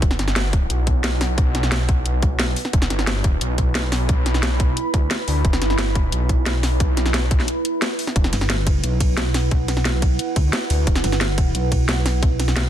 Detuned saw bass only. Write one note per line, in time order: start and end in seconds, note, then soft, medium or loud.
0.02 0.18 E1 loud
0.19 0.69 G1 loud
0.70 2.04 B1 medium
2.06 2.55 B1 loud
2.73 2.89 E1 loud
2.90 3.40 G1 loud
3.41 4.75 B1 loud
4.94 5.09 D2 loud
5.28 5.43 D2 loud
5.45 5.60 E1 loud
5.62 6.11 G1 loud
6.12 7.47 B1 medium
8.16 8.31 E1 loud
10.70 10.86 D2 loud
10.87 11.03 E1 loud